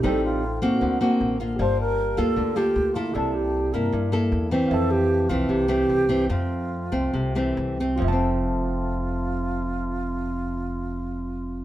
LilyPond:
<<
  \new Staff \with { instrumentName = "Tine electric piano" } { \time 4/4 \key f \major \tempo 4 = 152 <ees' a' c'' g''>2 <d' bes' c'' fis''>2 | <g' f'' a''>1 | <e' d'' a''>1 | <c'' e'' f'' a''>1~ |
<c'' e'' f'' a''>1 | <f' c'' e'' a''>1~ | <f' c'' e'' a''>1 | }
  \new Staff \with { instrumentName = "Alto flute" } { \time 4/4 \key f \major a'8 f'4 ges'4 r4. | c''8 bes'4 a'4 g'4 f'8 | a'8 g'4 bes'4 r4. | a'8 g'4 f'8 g'2 |
f'2. r4 | f'1~ | f'1 | }
  \new Staff \with { instrumentName = "Nylon-string guitar" } { \time 4/4 \key f \major << { <g c' ees'>4 r8 <bes c' ges'>4 <bes c' fis'>4 <bes f'>8~ | <bes f'>4. <bes f' a'>4 <bes f' a'>4 <bes e' a'>8~ | <bes e' a'>4. <bes e'>4 <bes e' a'>4 <e a c'>8~ | <e a c'>4. <e a c'>4 <e a c'>4 <e a c'>8 |
<a c'>4. <a c'>4 <e a c'>4 <a c'>8~ | <a c'>4 r2. | r1 | } \\ { a,2 d2 | g2 d2 | c2 g,2 | f,2 c2 |
f,2 c2 | <f, a c'>1~ | <f, a c'>1 | } >> }
  \new Staff \with { instrumentName = "Upright bass" } { \clef bass \time 4/4 \key f \major a,,4. ees,8 d,4 a,,4 | g,,4. d,8 d,4 d,4 | c,4. g,8 g,4 e,4 | f,4. c,8 c,4 c,4 |
f,4. c,8 c,4 c,4 | f,,1~ | f,,1 | }
>>